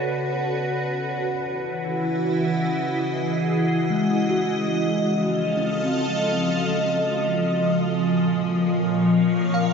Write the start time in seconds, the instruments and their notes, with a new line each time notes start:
Already playing: synth drone C#3 F#4, tine electric piano B3 C#5, ambient pad F#4 A4 B4, glass harmonica F#5
1.18 ambient pad E3
1.35 ambient pad E4
2.17 ambient pad D#5
2.67 ambient pad G#4
3.90 tine electric piano G#3
4.29 tine electric piano F#4
4.52 glass harmonica D#5
4.67 ambient pad F3
4.93 ambient pad F5
4.99 ambient pad A4
5.57 tine electric piano C4
7.82 ambient pad A#2, glass harmonica G#5
8.18 ambient pad A#4
8.29 ambient pad C#5
8.65 ambient pad F5
9.54 tine electric piano F5